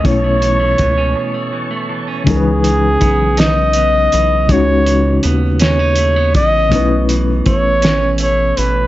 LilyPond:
<<
  \new Staff \with { instrumentName = "Tonewheel organ" } { \time 6/8 \key cis \minor \tempo 4. = 54 <cis'' a'' cis'''>2. | r2. | r2. | r2. | }
  \new Staff \with { instrumentName = "Flugelhorn" } { \time 6/8 \key cis \minor cis''2~ cis''8 r8 | gis'4. dis''4. | cis''4 r8 cis''4 dis''8~ | dis''8 r8 cis''4 cis''8 b'8 | }
  \new Staff \with { instrumentName = "Reed electric piano" } { \time 6/8 \key cis \minor <b, a cis' e' cis''>2. | <cis e gis dis' ais' b'>2. | <cis gis cis' dis' fis'>2. | <b, a cis' dis' e' b'>2. | }
  \new Staff \with { instrumentName = "Clean electric guitar" } { \time 6/8 \key cis \minor <b, e a cis'>16 a16 e16 a16 e16 cis'16 b,16 a16 e16 a16 e16 cis'16 | cis8 e8 b8 dis'8 b8 e8 | cis8 e8 b8 cis'16 dis'16 a16 b16 e8 | b,8 e8 a8 cis'8 a8 e8 | }
  \new Staff \with { instrumentName = "Analog synth bass" } { \clef bass \time 6/8 \key cis \minor b,,4 cis,8 r4. | cis,4 b,,4. b,,8 | cis,4 dis,4. a,,8 | b,,4 a,,4. a,,8 | }
  \new DrumStaff \with { instrumentName = "Drums" } \drummode { \time 6/8 <hh bd>8 hh8 <hh bd>8 r4. | <hh bd>8 hh8 <hh bd>8 <hh sn>8 hh8 hh8 | <hh bd>8 hh8 hh8 <hh sn>8 hh8 <hh bd>8 | <hh bd>8 hh8 <hh bd>8 <hh sn>8 hh8 hh8 | }
>>